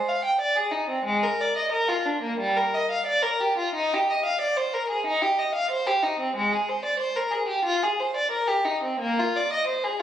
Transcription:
0.09 0.24 F5 medium
0.25 0.40 G5 medium
0.40 0.56 D5 medium
0.56 0.72 G#4 medium
0.72 0.88 D#4 soft
0.88 1.04 C4 soft
1.05 1.21 G#3 medium
1.23 1.39 A#4 medium
1.41 1.56 D5 medium
1.57 1.72 D#5 medium
1.72 1.87 A#4 medium
1.88 2.04 F4 medium
2.05 2.21 D4 soft
2.22 2.38 A#3 soft
2.40 2.55 G3 medium
2.56 2.72 A#4 medium
2.74 2.89 D#5 medium
2.91 3.06 F5 medium
3.06 3.22 D5 medium
3.23 3.39 A#4 medium
3.40 3.57 G4 medium
3.58 3.75 F4 medium
3.75 3.92 D#4 medium
3.94 4.10 G4 medium
4.10 4.26 D#5 medium
4.25 4.41 F5 medium
4.41 4.57 D5 medium
4.57 4.73 C5 medium
4.74 4.90 A#4 medium
4.89 5.05 G#4 medium
5.06 5.22 D#4 medium
5.22 5.38 G4 medium
5.39 5.54 D#5 medium
5.54 5.70 F5 medium
5.71 5.86 C5 medium
5.87 6.03 G4 medium
6.03 6.19 D#4 medium
6.19 6.35 C4 medium
6.36 6.51 G#3 medium
6.53 6.68 G#4 medium
6.69 6.83 C5 medium
6.85 6.99 D5 medium
6.99 7.14 C5 medium
7.16 7.31 A#4 medium
7.31 7.47 G#4 medium
7.48 7.63 G4 medium
7.65 7.80 F4 medium
7.83 7.98 G#4 medium
7.99 8.14 C5 medium
8.16 8.30 D5 medium
8.31 8.46 A#4 medium
8.47 8.64 G4 medium
8.65 8.81 D#4 medium
8.83 8.99 C4 medium
9.00 9.17 A#3 medium
9.19 9.35 F4 medium
9.36 9.52 D5 medium
9.52 9.68 D#5 medium
9.67 9.83 C5 medium
9.84 10.00 G#4 medium

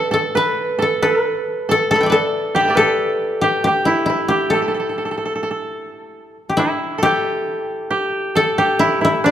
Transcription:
0.00 0.75 D4 medium
0.00 0.34 E4 medium
0.00 0.11 A4 medium
0.00 0.13 A4 medium
0.00 0.35 B4 medium
0.00 0.37 B4 medium
0.00 0.78 D5 soft
0.00 0.64 E5 soft
0.00 0.45 G5 soft
0.00 0.34 A5 soft
0.00 0.23 B5 soft
0.11 0.78 A4 soft
0.11 0.82 A4 medium
0.35 1.02 B4 medium
0.79 1.68 A4 medium
0.79 1.03 A4 medium
1.02 1.22 A4 medium
1.02 2.74 B4 medium
1.22 2.09 B4 medium
1.69 1.91 A4 medium
1.69 1.90 A4 medium
1.91 2.12 A4 medium
1.91 2.11 A4 medium
1.91 3.11 B5 soft
1.96 3.21 A5 soft
2.01 3.52 E5 soft
2.01 3.35 G5 soft
2.06 3.87 B4 soft
2.06 3.66 D5 soft
2.12 2.79 A4 medium
2.12 2.76 A4 medium
2.55 3.43 G4 medium
2.55 3.41 G4 medium
2.55 3.73 B5 soft
2.60 3.86 A5 soft
2.65 4.17 E5 soft
2.65 4.00 G5 soft
2.70 4.30 D5 soft
2.75 4.50 A4 medium
2.75 4.52 B4 soft
2.79 4.53 A4 medium
3.41 3.64 G4 medium
3.41 3.67 G4 medium
3.64 4.28 G4 medium
3.64 4.30 G4 soft
3.85 4.05 E4 medium
3.85 4.09 E4 medium
4.06 6.32 E4 medium
4.06 6.36 E4 soft
4.28 6.32 G4 soft
4.28 6.34 G4 medium
4.50 6.40 A4 medium
4.50 4.61 A4 soft
4.62 4.67 A4 soft
4.68 4.74 A4 soft
4.74 4.79 A4 soft
4.80 4.89 A4 soft
4.89 4.97 A4 soft
4.98 5.05 A4 soft
5.05 5.11 A4 soft
5.11 5.17 A4 soft
5.17 5.25 A4 soft
5.25 5.35 A4 soft
5.35 5.42 A4 soft
5.43 5.50 A4 soft
5.51 6.98 A4 soft
6.49 7.02 G4 soft
6.57 8.79 E4 medium
6.57 8.79 E4 soft
6.98 8.35 A4 soft
7.03 8.58 G4 medium
7.03 7.90 G4 medium
7.91 8.58 G4 medium
8.35 9.31 A4 medium
8.58 9.31 G4 medium
8.79 9.04 E4 medium
8.79 9.01 E4 medium
9.01 9.31 E4 medium
9.24 9.31 D4 medium

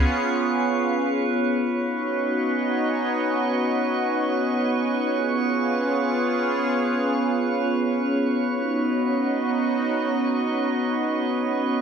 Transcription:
0.00 1.70 B3 medium
0.00 1.70 C#4 medium
0.00 1.70 F4 medium
0.00 1.70 G#4 medium
0.00 1.70 B4 medium
0.00 1.70 C#5 medium
0.00 1.70 F5 medium
0.00 1.70 C#6 medium
1.74 11.81 B3 medium
1.74 11.81 C#4 medium
1.74 5.08 D#4 medium
1.74 5.08 F#4 medium
1.74 11.81 B4 medium
1.74 11.81 C#5 medium
1.74 5.08 D#5 medium
1.74 11.81 C#6 medium
5.12 8.46 F4 medium
5.12 8.46 G#4 medium
5.12 8.46 F5 medium
8.50 11.81 D#4 medium
8.50 11.81 F#4 medium
8.50 11.81 D#5 medium

